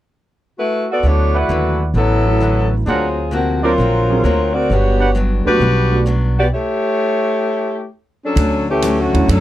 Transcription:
0.58 A3 E4 F#4 B4
0.91 B3 F#4 A4 D5
1.03 D2 D3 F#3 A3 B3 D4 E4 F#4 C#5
1.34 E4 B4 D5 F#5
1.38 A3 E4 F#4 B4
1.49 D#2 D3 F#3 B3 E4
1.94 A1 D3 F#3 B3 E4 A4
2.26 F#3 A3 B3 E4
2.40 D3 F#3 B3 E4
2.86 D2 D3 F#3 A#3 C4 D4 F4 F#4 G#4 A#4 C5 F#5
3.31 C3 D3 F3 A#3 C4 F#4
3.62 F#3 A#3 C4 D4 F4 A#4 C5 D5
3.78 A#1 D3 A#3 C4 F#4
4.08 F#3 A#3 C4 G#4
4.22 D2 D3 F#3 A#3 C4 F4 F#4 A#4
4.54 C4 F#4 A#4 D5
4.69 G1 G2 F#3 B3 F#4 G4 C#5
4.73 D4
4.99 D4 G4 B4 F#5
5.15 G2 F#3 B3 D4
5.45 F#1 G3 A3 B3 D4 F#4 B4
5.59 B1 G2 F#3 B3 D4
5.91 A3 B3 D4 F#4
6.06 G2 F#3 B3 D4
6.38 B3 F#4 G4 D5
6.53 A3 E4 G4 C#5
8.24 F#3 C#4 D4 A4
8.35 D2 D3 F#3 A3 C#4, kick, ride
8.69 E3 A3 C#4 G4
8.82 D3 F#3 A3 C#4, hi-hat pedal, ride
9.00 D3 A3 C#4 F#4
9.13 D#2 F#3 A3 C#4 E4, ride
9.28 F#2 D3 F#3 A3 C#4 D4 A4, kick, ride

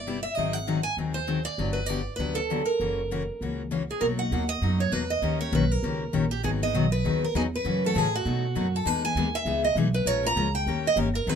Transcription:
Already playing: G1 D5
0.07 C3 G3 B3 E4 G4
0.23 E5
0.35 G#1 D#3 F#3 C4 D#4 G#4 D#5
0.53 F#5
0.67 D#3 F#3 C4 D#4 G#4
0.83 G#5
0.97 D#2 D#3 F#3 C4 D#4 G#4
1.14 C5
1.27 D#3 F#3 C4 D#4 G#4
1.45 D5
1.58 G1 D3 F#3 B3 D4 G4
1.73 B4
1.86 D3 F#3 B3 D4 D5
1.90 G4
2.16 D2 D3 F#3 B3 D4 B4
2.20 G4
2.35 A4
2.50 D3 F#3 B3 D4 G4
2.66 A#4
2.80 F#1 C#3 E3 A#3 C#4 F#4
3.11 C#3 E3 A#3 C#4 F#4
3.41 C#2 C#3 E3 A#3 C#4 F#4
3.71 C#3 E3 A#3 C#4 F#4
3.91 G#4
4.00 B1 B2 F#3 A#3 D#4 F#4 A#4
4.19 A#3 D#4 F#4 F#5
4.31 D#2 B2 F#3 A#3 D#4 F#4
4.49 D#5
4.61 F#2 B2 F#3 A#3 D#4 F#4
4.80 C#5
4.92 E2 B2 F#3 A#3 D#4 F#4 B4
5.10 D#5
5.22 D#2 D#3 A#3 C#4 G4 A#4
5.41 C#4 G4 A#4 C#5
5.52 B1 D#3 A#3 C#4 G4 A#4 B4
5.71 A#4
5.83 C#2 D#3 A#3 C#4 G4 A#4
6.13 A#1 D#3 A#3 C#4 G4 A#4
6.31 G4
6.43 G#1 D#3 F#3 B3 D#4 G#4
6.62 B3 D#4 G#4 D#5
6.74 B1 D#3 F#3 B3 D#4 G#4
6.92 B4
7.05 D#2 D#3 F#3 B3 D#4 G#4
7.25 A#4
7.35 E2 D#3 F#3 B3 D#4 G#4
7.55 B4
7.65 F#2 C#3 E3 A3 C#4 F#4
7.84 A3 C#4 F#4 A4
7.95 A2 C#3 E3 A3 C#4 F#4 G#4
8.16 F#4
8.25 B2 F#3 A3 D#4 F#4
8.55 F#2 B2 F#3 A3 D#4 F#4
8.76 A4
8.85 E2 E3 G#3 B3 D#4 G#4 B4
9.05 B3 D#4 G#4 G#5
9.15 D#2 E3 G#3 B3 D#4 G#4
9.35 E5
9.45 C#2 E3 G#3 B3 D#4 G#4
9.64 D#5
9.75 B1 E3 G#3 B3 D#4 G#4
9.94 B4
10.05 A#1 F3 G#3 C#4 F4 A#4 C#5
10.23 C#4 F4 A#4 A#5
10.36 C#2 F3 G#3 C#4 F4 A#4
10.55 G5
10.66 D#2 D#3 A#3 C#4 G4 A#4
10.87 D#5
10.96 G1 D#3 A#3 C#4 G4 A#4
11.15 A#4
11.27 G#1 D#3 F#3 B3 D#4 G#4 B4

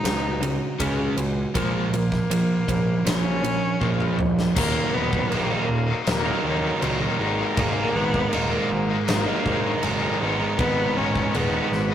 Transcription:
Already playing: C#3 G#3 D#4 F#4
0.04 C#2 C#3 G#3 C#4, snare, ride
0.41 C#3 G#3 F#4, ride
0.79 C#2 C#3 G#3 C#4 G#4, kick, ride
1.17 C#2 C#3 G#3 F#4, ride
1.54 A#1 A#2 F3 G#3 A#3, kick, ride
1.92 A#1 A#2 F3 A#3, ride
2.12 kick, snare
2.30 A#1 A#2 F3, ride
2.68 A#1 A#2 F3 C#4, kick, ride
3.05 A#1 A#2 F3 A#3 C#4, snare, ride
3.43 A#2 F3 C#4, ride
3.80 A#1 A#2 F3 A#3 F4, kick
4.00 mid tom
4.18 A#1 A#2 F3 C#4, mid tom
4.39 snare
4.54 D#1 D#2 A#2 D#3 F#3 A#3 D#4, kick, crash
4.92 D#1 D#3 F#3 A#3 B3 D#4
5.13 kick
5.30 A#1 D#2 A#2 D#3 F#3 A#3 D#4, crash
5.49 D#3 F#3 A#3 D#4
5.68 D#1, muted overdriven electric guitar stroke
5.87 D#3 F#3 A#3 D#4
6.07 D#1 A#3, snare, crash
6.25 D#3 F#3 A#3 D#4
6.44 D#2 D#3 F#3 A#3 D#4
6.81 C#2 D#2 A#2 D#3 F#3 A#3 D#4, crash
6.99 D#3 F#3 A#3 D#4
7.19 G#1 G#2 D#3 G#3 A#3 D#4
7.38 G#3 A#3 D#4
7.57 G#1 G#2 D#3 G#3 A#3 D#4, kick, crash
7.94 G#1 D#3 G#3 A#3 B3 D#4
8.14 kick
8.32 D#1 G#2 D#3 G#3 A#3 D#4, crash
8.50 G#3 A#3 D#4
8.71 G#1, muted overdriven electric guitar stroke
8.89 G#3 A#3 D#4
9.08 G#1 A#3, snare, crash
9.27 G#3 A#3 D#4
9.45 G#2 D#3 G#3 A#3 D#4, kick
9.83 F#1 G#2 D#3 G#3 A#3 D#4, crash
10.02 G#3 A#3 D#4
10.20 G#1 G#2 D#3 G#3 B3 D#4
10.39 G#3 B3 D#4
10.58 G#1 G#2 D#3 G#3 B3 D#4, kick, crash
10.96 G#1 D#3 G#3 B3 C#4 D#4
11.15 kick
11.34 D#1 G#2 D#3 G#3 B3 D#4, crash
11.53 G#3 B3 D#4
11.71 G#1, muted overdriven electric guitar stroke, snare
11.90 D#4

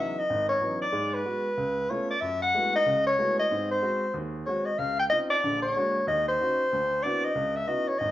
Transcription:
Already playing: E3 F#3 B3 C#4
0.00 D#4 E5
0.18 D#5
0.30 G#1
0.49 C#5
0.61 E3 F#3 B3 C#4 D#4
0.81 D5
0.92 G#2 G#3
1.14 B4
1.25 G#3 B3 F#4
1.57 C#2
1.90 A3 B3 C#4 F4 C#5
2.10 D5
2.21 F#2 E5
2.42 F#5
2.54 G#3 A3 B3 E4 F#4
2.75 D#5
2.86 C#2 C#3
3.07 C#5
3.19 G#3 A3 B3 E4 F#4
3.39 D#5
3.51 G#2 C4
3.71 C5
3.82 G#3 C4 F#4
4.14 D#2
4.46 G#3 C4 F#4 C#5
4.65 D#5
4.78 C#2 F5
4.99 G5
5.10 C4 C#4 D#4 F4 D#5
5.30 D5
5.43 A#1 D3
5.62 C#5
5.76 G#3 A#3 D4 F#4
6.07 D#2 D#5
6.28 C5
6.40 C#4 D#4 F#4
6.73 D2
7.02 B3 C4 D4 E4 F#4 D5
7.25 D#5
7.35 C#2
7.56 E5
7.67 B3 C#4 D#4 E4 F#4 D#5
7.88 C#5
7.99 G#1 D#5

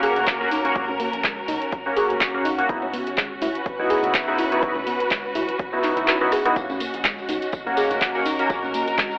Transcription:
Already playing: D#2 A#3 C#4 F#4 A#4
0.03 G#4, open hi-hat
0.16 closed hi-hat, low conga
0.27 kick, clap, closed hi-hat
0.40 D#2 A#3 C#4 F#4
0.51 D#4, open hi-hat
0.65 A#3 C#4 F#4, closed hi-hat
0.75 D#2 A#3 C#4 F#4, kick, closed hi-hat
0.88 C#4, low conga
1.00 A#3, open hi-hat
1.13 A#1, closed hi-hat
1.24 G#3, kick, clap, closed hi-hat
1.48 D#2 D#4, open hi-hat, low conga
1.62 closed hi-hat
1.72 kick, closed hi-hat
1.86 D#2 A#3 C#4 F#4
1.97 G#4, open hi-hat
2.10 closed hi-hat, low conga
2.21 kick, clap, closed hi-hat
2.34 D#2 A#3 C#4 F#4
2.45 D#4, open hi-hat
2.58 A#3 C#4 F#4, closed hi-hat
2.69 C#2 B3 D#4 E4 F#4, kick, closed hi-hat
2.82 C#4, low conga
2.93 B3, open hi-hat
3.07 G#1, closed hi-hat
3.18 G#3, kick, clap, closed hi-hat
3.42 C#2 E4, open hi-hat, low conga
3.55 B4, closed hi-hat
3.66 kick, closed hi-hat
3.79 C#2 B3 D#4 E4 F#4, high conga
3.90 G#4, open hi-hat
4.03 closed hi-hat, low conga
4.14 kick, clap, closed hi-hat
4.28 C#2 B3 D#4 E4 F#4
4.38 E4, open hi-hat
4.52 B3 D#4 E4 F#4, closed hi-hat
4.62 C#2 B3 D#4 E4 F#4, kick, closed hi-hat
4.75 C#4, low conga
4.87 B3, open hi-hat
5.00 G#1, closed hi-hat
5.11 G#3, kick, clap, closed hi-hat
5.35 C#2 E4, open hi-hat, low conga
5.48 closed hi-hat, high conga
5.59 kick, closed hi-hat
5.73 C#2 B3 D#4 E4 F#4
5.84 D#4, clap, open hi-hat
5.97 closed hi-hat, low conga
6.08 cross-stick, clap, closed hi-hat
6.21 C#2 B3 D#4 E4 F#4, cross-stick
6.32 G#4, cross-stick, open hi-hat
6.45 B3 D#4 E4 F#4, cross-stick, closed hi-hat
6.56 D#2 A#3 C#4 F#4 D#5, kick, closed hi-hat, tambourine
6.70 C#4, tambourine, low conga
6.80 A#3, open hi-hat, tambourine
6.94 A#1, closed hi-hat, tambourine
7.04 G#3, kick, clap, closed hi-hat, tambourine
7.18 tambourine
7.29 D#2 D#4, open hi-hat, tambourine, low conga
7.42 closed hi-hat, tambourine
7.52 kick, closed hi-hat, tambourine
7.66 D#2 A#3 C#4 F#4 A#4, tambourine, high conga
7.77 G#4, open hi-hat, tambourine
7.91 closed hi-hat, tambourine, low conga
8.01 kick, clap, closed hi-hat, tambourine
8.15 D#2 A#3 C#4 F#4, tambourine
8.25 D#4, open hi-hat, tambourine
8.39 A#3 C#4 F#4, closed hi-hat, tambourine
8.50 D#2 A#3 C#4 F#4, kick, closed hi-hat, tambourine
8.63 C#4, tambourine, low conga
8.74 A#3, open hi-hat, tambourine
8.88 A#1, closed hi-hat, tambourine
8.98 G#3, kick, clap, closed hi-hat, tambourine
9.11 tambourine

